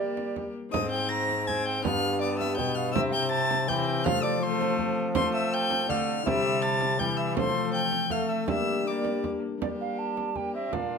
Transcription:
0.00 0.52 G3 medium
0.00 0.74 G3 soft
0.00 0.53 A#3 medium
0.00 0.73 A#3 soft
0.00 0.53 G4 medium
0.00 0.74 G4 soft
0.00 0.35 D5 medium
0.17 frame drum soft
0.36 frame drum medium
0.69 1.85 G#2 medium
0.69 1.83 C4 medium
0.69 1.84 D#4 medium
0.69 0.90 D#5 medium
0.69 0.89 D#6 loud
0.73 1.80 G#2 medium
0.73 1.43 C4 medium
0.73 frame drum medium
0.91 1.09 G5 medium
0.91 1.11 G6 loud
1.09 1.48 A#5 loud
1.09 1.49 A#6 loud
1.29 frame drum soft
1.47 1.86 C4 medium
1.47 1.65 G#5 medium
1.47 1.67 G#6 medium
1.47 frame drum medium
1.65 1.83 G5 medium
1.65 1.84 G6 loud
1.80 2.96 G2 medium
1.80 2.94 B3 medium
1.80 2.95 D4 medium
1.80 2.92 G4 soft
1.84 2.59 G2 medium
1.84 2.20 B3 medium
1.84 1.89 G5 medium
1.84 2.20 F6 loud
1.84 frame drum medium
1.88 2.21 F5 medium
2.20 2.96 B3 medium
2.20 2.38 D5 medium
2.20 2.38 D6 loud
2.38 2.57 E5 medium
2.38 2.56 E6 loud
2.38 frame drum medium
2.57 2.96 B2 medium
2.57 2.76 G5 loud
2.57 2.76 G6 medium
2.57 frame drum medium
2.75 2.94 F5 medium
2.75 2.92 F6 medium
2.90 4.06 C3 medium
2.90 3.63 C4 medium
2.90 3.64 E4 medium
2.90 3.65 G4 medium
2.90 3.00 E6 loud
2.95 3.70 C3 medium
2.95 3.68 C4 medium
2.95 3.14 E5 loud
2.95 frame drum medium
3.12 3.29 G5 loud
3.12 3.30 G6 loud
3.29 3.69 A5 loud
3.29 3.70 A6 loud
3.51 frame drum medium
3.64 4.06 E3 medium
3.64 4.01 C4 medium
3.64 4.05 E4 medium
3.64 4.06 G4 medium
3.64 4.04 G5 medium
3.68 4.07 E3 medium
3.68 4.07 C4 medium
3.68 4.06 G6 loud
3.68 frame drum medium
4.02 5.88 F3 medium
4.02 6.27 F3 medium
4.02 4.42 A3 medium
4.02 4.38 C4 medium
4.02 4.39 F4 medium
4.02 4.40 A4 medium
4.02 4.22 F5 loud
4.02 4.25 F6 loud
4.02 frame drum medium
4.22 4.42 D5 loud
4.22 4.44 D6 loud
4.39 5.14 A3 loud
4.39 5.84 C4 medium
4.39 5.85 F4 medium
4.39 5.86 A4 medium
4.39 4.92 C5 medium
4.39 4.97 C6 loud
4.61 frame drum medium
4.78 frame drum medium
5.14 5.87 A3 medium
5.14 5.20 C5 loud
5.14 5.32 C6 loud
5.14 frame drum loud
5.34 5.52 E5 medium
5.34 5.55 E6 loud
5.53 5.91 G5 loud
5.53 5.91 G6 loud
5.70 frame drum medium
5.85 6.27 D3 medium
5.85 6.25 D3 medium
5.85 6.25 A3 medium
5.85 6.21 C4 medium
5.85 6.26 F4 medium
5.85 6.26 A4 medium
5.90 6.24 F5 medium
5.90 6.28 F6 loud
5.90 frame drum medium
6.22 7.01 C3 medium
6.22 7.38 C3 medium
6.22 7.31 C4 medium
6.22 7.36 E4 medium
6.22 7.37 G4 medium
6.22 6.61 E5 loud
6.26 6.98 G3 medium
6.26 6.64 E6 loud
6.26 frame drum medium
6.62 6.98 A5 loud
6.62 7.01 A6 loud
6.81 frame drum medium
6.99 7.38 E3 medium
6.99 7.37 G3 medium
6.99 7.05 G5 medium
6.99 7.18 G6 loud
6.99 frame drum medium
7.17 7.35 E5 medium
7.17 7.36 E6 medium
7.33 8.50 F3 medium
7.33 7.84 F3 medium
7.33 8.10 A3 medium
7.33 8.48 C4 medium
7.33 8.49 F4 medium
7.33 8.49 A4 medium
7.33 7.72 C5 loud
7.37 7.73 C6 loud
7.37 frame drum medium
7.73 8.13 G5 loud
7.73 8.13 G6 loud
7.92 frame drum soft
8.10 8.50 A3 medium
8.10 8.29 F5 medium
8.10 8.30 F6 medium
8.10 frame drum medium
8.29 8.48 E5 medium
8.29 8.47 E6 medium
8.45 9.43 G3 medium
8.45 9.60 G3 medium
8.45 8.82 A#3 medium
8.45 8.86 A#3 medium
8.45 8.83 D4 soft
8.45 8.84 G4 soft
8.45 8.85 E5 medium
8.45 8.89 E6 loud
8.45 frame drum medium
8.83 9.56 A#3 medium
8.83 9.42 A#3 medium
8.83 9.57 D4 medium
8.83 9.59 G4 medium
8.88 9.24 D5 medium
8.88 9.25 D6 medium
9.05 frame drum medium
9.24 frame drum medium
9.58 10.74 G3 soft
9.58 10.68 G3 medium
9.58 10.67 A#3 soft
9.58 10.69 D4 soft
9.58 10.73 G4 soft
9.62 10.32 A#3 medium
9.62 10.33 G4 medium
9.62 9.68 D5 medium
9.62 frame drum medium
9.81 10.00 F5 medium
9.99 10.38 A5 medium
10.17 frame drum soft
10.36 10.56 A#3 soft
10.36 10.74 G4 soft
10.36 10.54 G5 medium
10.36 frame drum soft
10.54 10.74 C4 medium
10.54 10.75 E5 medium
10.68 10.98 A#3 soft
10.68 10.98 D4 soft
10.68 10.98 F4 soft
10.72 10.98 A#2 soft
10.72 10.98 A#2 medium
10.72 10.98 D4 medium
10.72 10.98 F4 medium
10.72 10.98 F5 medium
10.72 frame drum medium

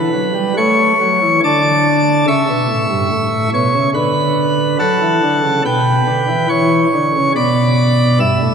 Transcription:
0.00 0.54 B4 medium
0.00 0.54 B5 loud
0.13 0.32 F#3 medium
0.34 0.53 G3 medium
0.57 0.93 A3 medium
0.57 1.40 C#5 medium
0.57 1.40 C#6 loud
1.01 1.19 F#3 medium
1.22 1.40 E3 medium
1.44 2.25 D3 medium
1.44 2.25 D5 medium
1.44 2.26 A5 medium
1.44 2.25 D6 loud
2.27 2.45 C#3 medium
2.27 3.50 E5 medium
2.27 3.50 C#6 medium
2.27 3.50 E6 loud
2.49 2.67 B2 medium
2.69 2.87 A2 medium
2.90 3.08 G2 medium
3.12 3.47 A2 medium
3.54 3.71 B2 medium
3.54 3.89 C#5 medium
3.54 3.90 C#6 loud
3.75 3.92 C#3 medium
3.94 4.77 D3 medium
3.94 4.77 B4 medium
3.94 4.77 B5 loud
4.79 4.97 F#3 medium
4.79 5.62 A4 medium
4.79 5.62 F#5 medium
4.79 5.62 A5 loud
5.02 5.20 E3 medium
5.23 5.41 D3 medium
5.44 5.62 C#3 medium
5.65 6.01 B2 medium
5.65 6.48 B4 medium
5.65 6.48 G5 medium
5.65 6.48 B5 loud
6.08 6.26 D3 medium
6.29 6.47 E3 medium
6.49 6.86 E3 medium
6.49 7.32 C#5 medium
6.49 7.32 C#6 loud
6.94 7.11 D3 medium
7.15 7.33 C#3 medium
7.36 8.18 B2 medium
7.36 8.18 D5 medium
7.36 8.18 B5 medium
7.36 8.18 D6 loud
8.20 8.38 G2 medium
8.20 8.54 E5 loud
8.20 8.54 E6 loud
8.42 8.54 A2 medium

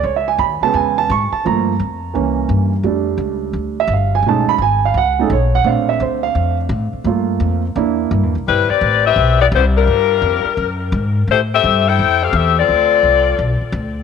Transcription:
0.03 0.38 C#2 medium
0.03 0.15 C#5 medium
0.16 0.28 E5 medium
0.28 0.39 G#5 medium
0.38 0.60 D#2 medium
0.38 0.61 B5 medium
0.61 1.07 C#3 medium
0.61 1.08 G#3 soft
0.61 1.08 B3 medium
0.61 0.74 A5 medium
0.61 muted upright bass stroke soft
0.74 1.08 E2 medium
0.74 0.97 G#5 medium
0.98 1.10 A5 medium
1.09 1.31 G#2 loud
1.09 1.33 C#6 medium
1.32 1.44 A5 medium
1.32 muted upright bass stroke soft
1.45 1.79 G2 medium
1.45 1.71 F3 soft
1.45 1.72 A3 soft
1.45 1.72 A#3 medium
1.45 2.47 A#5 medium
1.79 2.14 F2 medium
2.14 2.48 C2 medium
2.14 2.69 E3 medium
2.14 2.70 A#3 soft
2.14 2.70 C#4 medium
2.49 2.83 G2 loud
2.83 3.17 F2 medium
2.83 4.21 G3 soft
2.83 4.22 A3 soft
2.83 4.22 D4 medium
3.18 3.53 C#2 medium
3.53 3.87 D2 medium
3.80 3.91 E5 medium
3.88 4.22 G1 loud
3.94 4.14 F5 medium
4.15 4.26 G#5 medium
4.23 4.45 B1 medium
4.23 4.52 G#3 medium
4.27 4.53 A3 soft
4.27 4.53 C#4 soft
4.27 4.53 D#4 medium
4.27 4.49 A5 medium
4.46 4.61 B5 loud
4.46 muted upright bass stroke soft
4.58 4.94 G#1 medium
4.58 4.84 G#5 medium
4.85 4.97 F5 medium
4.94 5.29 C#2 medium
4.94 5.19 F#5 medium
5.19 5.30 G#3 soft
5.19 5.31 A3 soft
5.19 5.31 C#4 soft
5.19 5.31 D#4 medium
5.19 5.32 A4 medium
5.30 5.64 B1 loud
5.30 5.54 C#5 medium
5.55 5.67 F#5 medium
5.64 5.99 A#1 medium
5.64 7.02 A3 medium
5.64 7.02 C4 soft
5.64 7.03 D4 medium
5.64 5.89 F5 medium
5.89 6.01 E5 medium
6.00 6.34 D2 medium
6.00 6.24 C5 medium
6.23 6.56 F5 medium
6.35 6.69 F2 medium
6.69 6.92 A2 loud
6.93 muted upright bass stroke soft
7.04 7.39 G2 medium
7.04 7.61 A3 soft
7.04 7.62 A#3 soft
7.04 7.62 F4 medium
7.40 7.75 F2 medium
7.76 8.10 E2 medium
7.76 8.32 A#3 medium
7.76 8.32 D4 medium
7.76 8.32 E4 medium
8.11 8.23 G2 loud
8.23 8.34 E2 medium
8.35 8.46 C2 medium
8.48 8.69 G1 medium
8.48 8.69 G3 medium
8.48 8.69 C4 medium
8.48 8.69 E4 medium
8.48 8.69 B4 medium
8.70 9.05 C4 medium
8.70 9.05 G4 medium
8.70 9.05 B4 medium
8.70 9.05 D5 loud
8.70 muted upright bass stroke soft
8.81 9.15 A1 medium
9.06 9.39 C4 medium
9.06 9.39 G4 medium
9.06 9.39 B4 medium
9.06 9.39 E5 loud
9.16 9.51 B1 loud
9.40 9.46 B3 medium
9.40 9.47 E4 medium
9.40 9.46 G4 medium
9.40 9.46 D5 loud
9.52 9.86 C2 loud
9.52 9.65 G3 medium
9.52 9.65 B3 medium
9.52 9.65 E4 medium
9.52 9.65 C5 medium
9.78 10.55 G3 medium
9.78 10.55 D4 medium
9.78 10.55 F4 medium
9.78 10.78 A#4 loud
9.87 10.21 G2 medium
10.22 10.44 F2 loud
10.45 muted upright bass stroke soft
10.57 10.92 F#2 medium
10.92 11.27 G#2 loud
11.28 11.62 A2 medium
11.28 11.41 A3 medium
11.28 11.41 E4 medium
11.28 11.41 C5 loud
11.32 11.41 G4 medium
11.54 11.86 C4 medium
11.54 11.85 G4 medium
11.54 11.85 A4 medium
11.54 11.86 E5 loud
11.64 11.97 G2 medium
11.88 12.23 E4 medium
11.88 12.22 A4 loud
11.88 12.22 C5 medium
11.88 12.22 G5 loud
11.99 12.32 F2 medium
12.23 12.35 C4 medium
12.23 12.35 G4 medium
12.23 12.34 A4 medium
12.23 12.35 F5 loud
12.33 12.67 E2 loud
12.33 12.58 G4 medium
12.33 12.58 E5 medium
12.37 12.58 C4 medium
12.37 12.58 A4 medium
12.59 13.36 C4 medium
12.59 13.59 F4 medium
12.59 13.59 A4 medium
12.59 13.59 D5 loud
12.69 13.03 D2 medium
13.03 13.37 C2 medium
13.38 13.60 B1 medium
13.61 muted upright bass stroke soft
13.72 14.03 D2 loud

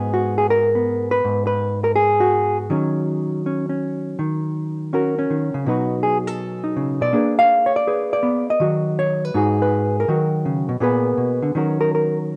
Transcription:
0.00 1.23 G#2 medium
0.00 1.22 G#3 soft
0.00 0.74 B3 soft
0.00 0.13 F#4 soft
0.00 0.37 G#4 soft
0.14 0.74 F#4 medium
0.38 0.50 G#4 medium
0.50 1.11 A#4 loud
0.75 2.71 B3 soft
1.11 1.46 B4 loud
1.25 2.71 G#2 medium
1.47 1.84 B4 medium
1.84 1.95 A#4 medium
1.96 2.57 G#4 loud
2.20 4.05 F#4 medium
2.70 4.16 D#3 medium
2.70 5.65 F#3 soft
2.70 3.46 C#4 soft
3.46 3.68 C#4 soft
3.69 4.17 C#4 soft
4.19 5.29 D#3 medium
4.93 5.16 C#4 medium
4.93 5.65 F#4 medium
4.93 5.65 A#4 medium
5.19 5.65 C#4 medium
5.30 5.54 D#3 medium
5.54 5.66 C#3 medium
5.66 7.00 B2 medium
5.66 7.13 F#3 soft
5.66 6.63 D#4 soft
5.66 6.27 F#4 soft
5.66 6.03 B4 soft
6.03 6.17 G#4 medium
6.27 7.13 A4 medium
6.64 7.11 D#4 soft
6.76 7.00 C#3 medium
7.01 7.13 B2 medium
7.01 7.38 D5 loud
7.13 8.59 A#3 medium
7.13 8.22 D4 soft
7.13 7.86 G#4 soft
7.13 7.66 B4 soft
7.39 7.75 F5 loud
7.66 7.75 C#5 medium
7.76 8.12 D5 medium
7.87 8.59 G#4 soft
7.87 8.59 B4 medium
8.13 8.49 D5 medium
8.23 8.47 B3 medium
8.50 9.35 D#5 medium
8.60 9.32 D#3 medium
8.60 9.34 F#3 soft
8.60 9.33 F#4 soft
8.99 9.25 C#5 medium
9.25 9.60 B4 medium
9.34 10.08 G#2 medium
9.34 10.06 D#4 soft
9.34 10.07 F#4 soft
9.34 10.09 G#4 medium
9.62 9.97 B4 medium
10.00 10.82 A#4 medium
10.08 10.68 D#3 medium
10.08 10.81 F#3 soft
10.08 10.81 F#4 soft
10.45 10.69 C#3 medium
10.69 10.80 B2 medium
10.80 11.17 A#2 medium
10.80 11.53 A#3 medium
10.80 11.55 B3 medium
10.80 11.54 G#4 medium
10.80 11.54 B4 medium
11.17 11.42 B2 medium
11.42 11.55 D3 medium
11.55 12.36 D#3 medium
11.55 12.36 F#3 soft
11.55 12.36 C#4 soft
11.55 12.36 F#4 soft
11.55 11.80 A#4 soft
11.81 11.92 A#4 medium
11.95 12.17 A#4 medium

